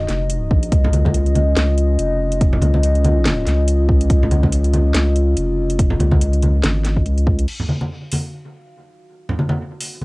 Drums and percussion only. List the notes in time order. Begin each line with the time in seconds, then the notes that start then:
0.09 snare, closed hi-hat
0.30 closed hi-hat
0.51 kick
0.63 closed hi-hat
0.72 kick, closed hi-hat
0.84 low conga
0.93 closed hi-hat, high conga
1.05 kick, high conga
1.14 closed hi-hat
1.26 closed hi-hat
1.35 closed hi-hat, high conga
1.57 snare, closed hi-hat
1.78 closed hi-hat
1.99 closed hi-hat
2.32 closed hi-hat
2.41 kick, closed hi-hat
2.53 low conga
2.62 closed hi-hat, high conga
2.74 high conga
2.83 closed hi-hat
2.95 closed hi-hat
3.04 closed hi-hat, high conga
3.25 snare, closed hi-hat, high conga
3.47 snare, closed hi-hat
3.68 closed hi-hat
3.89 kick
4.01 closed hi-hat
4.10 kick, closed hi-hat
4.23 low conga
4.31 closed hi-hat, high conga
4.43 kick, high conga
4.52 closed hi-hat
4.64 closed hi-hat
4.73 closed hi-hat, high conga
4.94 snare, closed hi-hat
5.16 closed hi-hat
5.37 closed hi-hat
5.70 closed hi-hat
5.79 kick, closed hi-hat
5.90 low conga
6.00 closed hi-hat, high conga
6.12 kick, high conga
6.21 closed hi-hat
6.33 closed hi-hat
6.43 closed hi-hat, high conga
6.64 snare, closed hi-hat, high conga
6.85 snare, closed hi-hat
6.97 kick
7.06 closed hi-hat
7.18 closed hi-hat
7.27 kick
7.39 closed hi-hat
7.48 crash
7.60 low conga
7.69 high conga
7.81 high conga
8.12 open hi-hat, high conga
9.29 low conga
9.39 high conga
9.49 high conga
9.81 open hi-hat
10.01 high conga